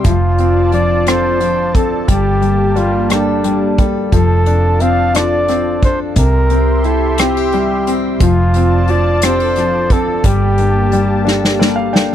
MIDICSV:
0, 0, Header, 1, 7, 480
1, 0, Start_track
1, 0, Tempo, 679425
1, 37, Time_signature, 6, 3, 24, 8
1, 8583, End_track
2, 0, Start_track
2, 0, Title_t, "Analog synth pad"
2, 0, Program_c, 0, 89
2, 33, Note_on_c, 0, 81, 72
2, 34, Note_on_c, 0, 65, 63
2, 35, Note_on_c, 0, 74, 58
2, 1461, Note_off_c, 0, 65, 0
2, 1461, Note_off_c, 0, 74, 0
2, 1475, Note_on_c, 0, 67, 63
2, 1478, Note_on_c, 0, 58, 57
2, 2887, Note_off_c, 0, 81, 0
2, 2902, Note_off_c, 0, 67, 0
2, 2903, Note_off_c, 0, 58, 0
2, 2913, Note_on_c, 0, 74, 60
2, 2914, Note_on_c, 0, 81, 68
2, 2916, Note_on_c, 0, 65, 63
2, 4341, Note_off_c, 0, 74, 0
2, 4342, Note_off_c, 0, 81, 0
2, 4343, Note_off_c, 0, 65, 0
2, 4356, Note_on_c, 0, 84, 66
2, 4360, Note_on_c, 0, 76, 58
2, 4361, Note_on_c, 0, 67, 63
2, 5783, Note_off_c, 0, 84, 0
2, 5785, Note_off_c, 0, 76, 0
2, 5786, Note_off_c, 0, 67, 0
2, 5797, Note_on_c, 0, 81, 71
2, 5798, Note_on_c, 0, 65, 64
2, 5801, Note_on_c, 0, 74, 58
2, 7224, Note_off_c, 0, 81, 0
2, 7225, Note_off_c, 0, 65, 0
2, 7226, Note_off_c, 0, 74, 0
2, 7244, Note_on_c, 0, 81, 73
2, 7248, Note_on_c, 0, 58, 58
2, 7248, Note_on_c, 0, 67, 61
2, 8583, Note_off_c, 0, 58, 0
2, 8583, Note_off_c, 0, 67, 0
2, 8583, Note_off_c, 0, 81, 0
2, 8583, End_track
3, 0, Start_track
3, 0, Title_t, "Flugelhorn"
3, 0, Program_c, 1, 56
3, 43, Note_on_c, 1, 65, 76
3, 492, Note_off_c, 1, 65, 0
3, 520, Note_on_c, 1, 74, 72
3, 765, Note_on_c, 1, 72, 78
3, 775, Note_off_c, 1, 74, 0
3, 1245, Note_on_c, 1, 69, 66
3, 1256, Note_off_c, 1, 72, 0
3, 1477, Note_off_c, 1, 69, 0
3, 1481, Note_on_c, 1, 67, 83
3, 1962, Note_on_c, 1, 65, 69
3, 1972, Note_off_c, 1, 67, 0
3, 2197, Note_off_c, 1, 65, 0
3, 2201, Note_on_c, 1, 62, 70
3, 2711, Note_off_c, 1, 62, 0
3, 2922, Note_on_c, 1, 69, 85
3, 3404, Note_on_c, 1, 77, 75
3, 3414, Note_off_c, 1, 69, 0
3, 3644, Note_on_c, 1, 74, 79
3, 3654, Note_off_c, 1, 77, 0
3, 4121, Note_off_c, 1, 74, 0
3, 4132, Note_on_c, 1, 72, 72
3, 4237, Note_off_c, 1, 72, 0
3, 4370, Note_on_c, 1, 70, 84
3, 4846, Note_on_c, 1, 69, 72
3, 4857, Note_off_c, 1, 70, 0
3, 5092, Note_on_c, 1, 67, 78
3, 5102, Note_off_c, 1, 69, 0
3, 5625, Note_off_c, 1, 67, 0
3, 5806, Note_on_c, 1, 65, 78
3, 6290, Note_on_c, 1, 74, 72
3, 6301, Note_off_c, 1, 65, 0
3, 6533, Note_on_c, 1, 72, 82
3, 6543, Note_off_c, 1, 74, 0
3, 7011, Note_on_c, 1, 69, 77
3, 7021, Note_off_c, 1, 72, 0
3, 7251, Note_on_c, 1, 67, 85
3, 7262, Note_off_c, 1, 69, 0
3, 8206, Note_off_c, 1, 67, 0
3, 8583, End_track
4, 0, Start_track
4, 0, Title_t, "Steel-string acoustic guitar"
4, 0, Program_c, 2, 25
4, 0, Note_on_c, 2, 60, 40
4, 0, Note_on_c, 2, 64, 36
4, 0, Note_on_c, 2, 67, 48
4, 38, Note_on_c, 2, 53, 58
4, 85, Note_off_c, 2, 60, 0
4, 85, Note_off_c, 2, 67, 0
4, 86, Note_off_c, 2, 64, 0
4, 284, Note_on_c, 2, 60, 40
4, 521, Note_on_c, 2, 62, 45
4, 757, Note_on_c, 2, 69, 49
4, 992, Note_off_c, 2, 60, 0
4, 1000, Note_on_c, 2, 60, 45
4, 1232, Note_off_c, 2, 69, 0
4, 1235, Note_on_c, 2, 69, 48
4, 1473, Note_off_c, 2, 53, 0
4, 1476, Note_on_c, 2, 55, 54
4, 1527, Note_off_c, 2, 60, 0
4, 1717, Note_on_c, 2, 58, 39
4, 1738, Note_off_c, 2, 69, 0
4, 1955, Note_off_c, 2, 62, 0
4, 1958, Note_on_c, 2, 62, 41
4, 2205, Note_on_c, 2, 69, 50
4, 2430, Note_off_c, 2, 58, 0
4, 2438, Note_on_c, 2, 58, 43
4, 2676, Note_off_c, 2, 69, 0
4, 2679, Note_on_c, 2, 69, 47
4, 2914, Note_off_c, 2, 55, 0
4, 2917, Note_on_c, 2, 53, 53
4, 2966, Note_off_c, 2, 58, 0
4, 2966, Note_off_c, 2, 62, 0
4, 2966, Note_off_c, 2, 69, 0
4, 3154, Note_on_c, 2, 60, 43
4, 3399, Note_on_c, 2, 62, 44
4, 3641, Note_on_c, 2, 69, 53
4, 3878, Note_off_c, 2, 60, 0
4, 3881, Note_on_c, 2, 60, 42
4, 4114, Note_off_c, 2, 69, 0
4, 4122, Note_on_c, 2, 69, 47
4, 4355, Note_off_c, 2, 60, 0
4, 4357, Note_off_c, 2, 53, 0
4, 4358, Note_on_c, 2, 60, 55
4, 4406, Note_off_c, 2, 62, 0
4, 4408, Note_off_c, 2, 69, 0
4, 4596, Note_off_c, 2, 60, 0
4, 4599, Note_on_c, 2, 60, 41
4, 4842, Note_on_c, 2, 64, 46
4, 5081, Note_on_c, 2, 65, 55
4, 5206, Note_off_c, 2, 65, 0
4, 5206, Note_on_c, 2, 67, 39
4, 5318, Note_off_c, 2, 60, 0
4, 5321, Note_on_c, 2, 60, 46
4, 5556, Note_off_c, 2, 67, 0
4, 5565, Note_on_c, 2, 67, 50
4, 5797, Note_on_c, 2, 53, 60
4, 5848, Note_off_c, 2, 60, 0
4, 5848, Note_off_c, 2, 64, 0
4, 5850, Note_off_c, 2, 67, 0
4, 6037, Note_on_c, 2, 60, 40
4, 6277, Note_on_c, 2, 62, 46
4, 6519, Note_on_c, 2, 67, 57
4, 6642, Note_off_c, 2, 67, 0
4, 6642, Note_on_c, 2, 69, 43
4, 6749, Note_off_c, 2, 60, 0
4, 6757, Note_on_c, 2, 60, 43
4, 6992, Note_off_c, 2, 69, 0
4, 7001, Note_on_c, 2, 69, 49
4, 7237, Note_off_c, 2, 53, 0
4, 7239, Note_on_c, 2, 55, 60
4, 7287, Note_off_c, 2, 60, 0
4, 7288, Note_off_c, 2, 69, 0
4, 7476, Note_on_c, 2, 58, 42
4, 7718, Note_off_c, 2, 62, 0
4, 7721, Note_on_c, 2, 62, 43
4, 7960, Note_on_c, 2, 69, 52
4, 8195, Note_off_c, 2, 58, 0
4, 8198, Note_on_c, 2, 58, 43
4, 8424, Note_off_c, 2, 69, 0
4, 8432, Note_on_c, 2, 69, 48
4, 8583, Note_off_c, 2, 55, 0
4, 8583, Note_off_c, 2, 58, 0
4, 8583, Note_off_c, 2, 62, 0
4, 8583, Note_off_c, 2, 69, 0
4, 8583, End_track
5, 0, Start_track
5, 0, Title_t, "Grand piano"
5, 0, Program_c, 3, 0
5, 0, Control_c, 3, 64, 127
5, 29, Note_on_c, 3, 53, 52
5, 47, Control_c, 3, 64, 0
5, 187, Control_c, 3, 64, 127
5, 278, Note_on_c, 3, 60, 38
5, 504, Note_off_c, 3, 53, 0
5, 514, Note_on_c, 3, 53, 45
5, 749, Note_off_c, 3, 60, 0
5, 760, Note_on_c, 3, 60, 44
5, 981, Note_off_c, 3, 53, 0
5, 992, Note_on_c, 3, 53, 40
5, 1222, Note_off_c, 3, 60, 0
5, 1233, Note_on_c, 3, 60, 39
5, 1460, Note_off_c, 3, 53, 0
5, 1468, Note_off_c, 3, 60, 0
5, 1469, Note_on_c, 3, 55, 52
5, 1486, Control_c, 3, 64, 0
5, 1616, Control_c, 3, 64, 127
5, 1696, Note_off_c, 3, 55, 0
5, 1707, Note_on_c, 3, 55, 38
5, 1937, Note_off_c, 3, 55, 0
5, 1948, Note_on_c, 3, 55, 39
5, 2177, Note_off_c, 3, 55, 0
5, 2187, Note_on_c, 3, 55, 42
5, 2422, Note_off_c, 3, 55, 0
5, 2433, Note_on_c, 3, 55, 40
5, 2663, Note_off_c, 3, 55, 0
5, 2674, Note_on_c, 3, 55, 39
5, 2908, Note_off_c, 3, 55, 0
5, 2914, Note_on_c, 3, 53, 48
5, 2926, Control_c, 3, 64, 0
5, 3059, Control_c, 3, 64, 127
5, 3157, Note_on_c, 3, 62, 37
5, 3398, Note_on_c, 3, 60, 43
5, 3622, Note_off_c, 3, 62, 0
5, 3632, Note_on_c, 3, 62, 39
5, 3866, Note_off_c, 3, 60, 0
5, 3877, Note_on_c, 3, 60, 40
5, 4113, Note_off_c, 3, 62, 0
5, 4124, Note_on_c, 3, 62, 40
5, 4328, Note_off_c, 3, 53, 0
5, 4343, Note_off_c, 3, 60, 0
5, 4354, Note_off_c, 3, 62, 0
5, 4354, Note_on_c, 3, 48, 49
5, 4368, Control_c, 3, 64, 0
5, 4486, Control_c, 3, 64, 127
5, 4595, Note_on_c, 3, 60, 40
5, 4838, Note_on_c, 3, 64, 42
5, 5074, Note_off_c, 3, 60, 0
5, 5084, Note_on_c, 3, 60, 42
5, 5324, Note_on_c, 3, 55, 42
5, 5558, Note_off_c, 3, 60, 0
5, 5569, Note_on_c, 3, 60, 40
5, 5768, Note_off_c, 3, 48, 0
5, 5770, Note_off_c, 3, 64, 0
5, 5787, Note_off_c, 3, 55, 0
5, 5797, Note_off_c, 3, 60, 0
5, 5807, Control_c, 3, 64, 0
5, 5810, Note_on_c, 3, 53, 54
5, 5920, Control_c, 3, 64, 127
5, 6049, Note_on_c, 3, 60, 39
5, 6277, Note_off_c, 3, 53, 0
5, 6287, Note_on_c, 3, 53, 45
5, 6520, Note_off_c, 3, 60, 0
5, 6530, Note_on_c, 3, 60, 46
5, 6757, Note_off_c, 3, 53, 0
5, 6768, Note_on_c, 3, 53, 41
5, 6999, Note_off_c, 3, 60, 0
5, 7009, Note_on_c, 3, 60, 41
5, 7229, Note_off_c, 3, 53, 0
5, 7237, Note_off_c, 3, 60, 0
5, 7240, Note_on_c, 3, 55, 55
5, 7247, Control_c, 3, 64, 0
5, 7379, Control_c, 3, 64, 127
5, 7482, Note_on_c, 3, 62, 37
5, 7712, Note_off_c, 3, 55, 0
5, 7723, Note_on_c, 3, 55, 42
5, 7937, Note_off_c, 3, 62, 0
5, 7947, Note_on_c, 3, 62, 40
5, 8180, Note_off_c, 3, 55, 0
5, 8190, Note_on_c, 3, 55, 40
5, 8193, Note_on_c, 3, 74, 47
5, 8307, Note_on_c, 3, 77, 50
5, 8308, Note_off_c, 3, 74, 0
5, 8418, Note_off_c, 3, 62, 0
5, 8425, Note_off_c, 3, 77, 0
5, 8429, Note_on_c, 3, 62, 39
5, 8429, Note_on_c, 3, 79, 47
5, 8583, Note_off_c, 3, 55, 0
5, 8583, Note_off_c, 3, 62, 0
5, 8583, Note_off_c, 3, 79, 0
5, 8583, End_track
6, 0, Start_track
6, 0, Title_t, "Fingered electric bass"
6, 0, Program_c, 4, 33
6, 33, Note_on_c, 4, 29, 75
6, 1447, Note_off_c, 4, 29, 0
6, 1475, Note_on_c, 4, 31, 75
6, 2888, Note_off_c, 4, 31, 0
6, 2913, Note_on_c, 4, 29, 70
6, 4327, Note_off_c, 4, 29, 0
6, 4351, Note_on_c, 4, 36, 76
6, 5767, Note_off_c, 4, 36, 0
6, 5793, Note_on_c, 4, 29, 86
6, 7208, Note_off_c, 4, 29, 0
6, 7234, Note_on_c, 4, 31, 78
6, 8583, Note_off_c, 4, 31, 0
6, 8583, End_track
7, 0, Start_track
7, 0, Title_t, "Drums"
7, 31, Note_on_c, 9, 42, 64
7, 34, Note_on_c, 9, 36, 84
7, 102, Note_off_c, 9, 42, 0
7, 105, Note_off_c, 9, 36, 0
7, 271, Note_on_c, 9, 42, 41
7, 342, Note_off_c, 9, 42, 0
7, 510, Note_on_c, 9, 42, 34
7, 580, Note_off_c, 9, 42, 0
7, 753, Note_on_c, 9, 42, 65
7, 765, Note_on_c, 9, 37, 81
7, 824, Note_off_c, 9, 42, 0
7, 835, Note_off_c, 9, 37, 0
7, 993, Note_on_c, 9, 42, 43
7, 1063, Note_off_c, 9, 42, 0
7, 1234, Note_on_c, 9, 36, 69
7, 1237, Note_on_c, 9, 42, 42
7, 1305, Note_off_c, 9, 36, 0
7, 1308, Note_off_c, 9, 42, 0
7, 1472, Note_on_c, 9, 42, 61
7, 1473, Note_on_c, 9, 36, 77
7, 1543, Note_off_c, 9, 36, 0
7, 1543, Note_off_c, 9, 42, 0
7, 1712, Note_on_c, 9, 42, 44
7, 1782, Note_off_c, 9, 42, 0
7, 1953, Note_on_c, 9, 42, 36
7, 2023, Note_off_c, 9, 42, 0
7, 2190, Note_on_c, 9, 42, 58
7, 2201, Note_on_c, 9, 37, 75
7, 2261, Note_off_c, 9, 42, 0
7, 2272, Note_off_c, 9, 37, 0
7, 2431, Note_on_c, 9, 42, 45
7, 2502, Note_off_c, 9, 42, 0
7, 2673, Note_on_c, 9, 42, 43
7, 2674, Note_on_c, 9, 36, 73
7, 2744, Note_off_c, 9, 36, 0
7, 2744, Note_off_c, 9, 42, 0
7, 2913, Note_on_c, 9, 42, 60
7, 2914, Note_on_c, 9, 36, 83
7, 2984, Note_off_c, 9, 36, 0
7, 2984, Note_off_c, 9, 42, 0
7, 3152, Note_on_c, 9, 42, 45
7, 3223, Note_off_c, 9, 42, 0
7, 3393, Note_on_c, 9, 42, 36
7, 3463, Note_off_c, 9, 42, 0
7, 3636, Note_on_c, 9, 42, 62
7, 3647, Note_on_c, 9, 37, 75
7, 3706, Note_off_c, 9, 42, 0
7, 3718, Note_off_c, 9, 37, 0
7, 3874, Note_on_c, 9, 42, 44
7, 3886, Note_on_c, 9, 37, 28
7, 3945, Note_off_c, 9, 42, 0
7, 3957, Note_off_c, 9, 37, 0
7, 4116, Note_on_c, 9, 36, 72
7, 4116, Note_on_c, 9, 42, 41
7, 4186, Note_off_c, 9, 36, 0
7, 4186, Note_off_c, 9, 42, 0
7, 4351, Note_on_c, 9, 42, 62
7, 4354, Note_on_c, 9, 36, 88
7, 4421, Note_off_c, 9, 42, 0
7, 4425, Note_off_c, 9, 36, 0
7, 4592, Note_on_c, 9, 42, 44
7, 4662, Note_off_c, 9, 42, 0
7, 4834, Note_on_c, 9, 42, 39
7, 4904, Note_off_c, 9, 42, 0
7, 5072, Note_on_c, 9, 42, 62
7, 5084, Note_on_c, 9, 37, 83
7, 5143, Note_off_c, 9, 42, 0
7, 5154, Note_off_c, 9, 37, 0
7, 5316, Note_on_c, 9, 42, 47
7, 5386, Note_off_c, 9, 42, 0
7, 5560, Note_on_c, 9, 42, 41
7, 5631, Note_off_c, 9, 42, 0
7, 5795, Note_on_c, 9, 42, 60
7, 5796, Note_on_c, 9, 36, 89
7, 5866, Note_off_c, 9, 42, 0
7, 5867, Note_off_c, 9, 36, 0
7, 6033, Note_on_c, 9, 42, 47
7, 6103, Note_off_c, 9, 42, 0
7, 6271, Note_on_c, 9, 42, 37
7, 6342, Note_off_c, 9, 42, 0
7, 6512, Note_on_c, 9, 42, 66
7, 6524, Note_on_c, 9, 37, 78
7, 6583, Note_off_c, 9, 42, 0
7, 6594, Note_off_c, 9, 37, 0
7, 6752, Note_on_c, 9, 42, 45
7, 6765, Note_on_c, 9, 37, 28
7, 6823, Note_off_c, 9, 42, 0
7, 6835, Note_off_c, 9, 37, 0
7, 6994, Note_on_c, 9, 42, 39
7, 6995, Note_on_c, 9, 36, 76
7, 7065, Note_off_c, 9, 42, 0
7, 7066, Note_off_c, 9, 36, 0
7, 7233, Note_on_c, 9, 42, 66
7, 7234, Note_on_c, 9, 36, 80
7, 7304, Note_off_c, 9, 42, 0
7, 7305, Note_off_c, 9, 36, 0
7, 7473, Note_on_c, 9, 42, 43
7, 7544, Note_off_c, 9, 42, 0
7, 7714, Note_on_c, 9, 42, 37
7, 7784, Note_off_c, 9, 42, 0
7, 7966, Note_on_c, 9, 38, 39
7, 8037, Note_off_c, 9, 38, 0
7, 8086, Note_on_c, 9, 38, 42
7, 8157, Note_off_c, 9, 38, 0
7, 8206, Note_on_c, 9, 38, 55
7, 8276, Note_off_c, 9, 38, 0
7, 8447, Note_on_c, 9, 38, 66
7, 8517, Note_off_c, 9, 38, 0
7, 8583, End_track
0, 0, End_of_file